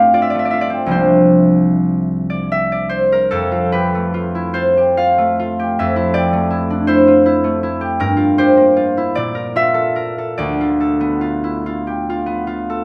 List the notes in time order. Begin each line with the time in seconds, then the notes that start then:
Already playing: G2 A3 C4 F4 G4 C5 D5 E5 F5
0.14 F4 D5
0.22 E5
0.30 D5
0.35 A3
0.39 E5
0.45 D5
0.51 F4 E5
0.61 D5
0.70 C4
0.86 C2 F3 A#3
0.90 D4 C5
2.30 D5
2.52 E5
2.72 D5
2.89 C5
3.12 A#4
3.31 F2 A4
3.52 F4
3.72 G4 B4
3.95 A3
4.14 F4
4.35 E4
4.54 F4 C5
4.77 G4
4.97 F4 F5
5.18 A3
5.39 F4
5.59 G4
5.79 F2 E5
5.96 E4
6.14 G4 D5
6.33 A3
6.50 E4
6.70 D4
6.87 E4 C5
7.07 F4
7.26 E4
7.44 A3
7.63 E4
7.81 G4
8.00 G2 A#4
8.17 F4
8.38 G4 C5
8.57 A#3
8.77 F4
8.97 E4
9.15 A#2 D5
9.35 A#4
9.56 F4 E5
9.74 A4
9.96 A#4
10.18 A4
10.38 D2 D5
10.61 F4
10.80 A4
11.01 B3
11.21 F4
11.44 E4
11.66 F4
11.87 G4
12.10 F4
12.26 B3
12.47 F4
12.70 A4